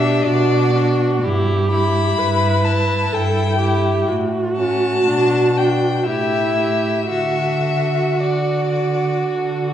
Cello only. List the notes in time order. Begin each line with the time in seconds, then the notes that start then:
Already playing: B2
0.26 B2
1.23 G2
2.18 G2
3.13 G2
4.08 A2
5.06 B2
6.06 A2
7.09 D3
8.18 D3
9.22 D3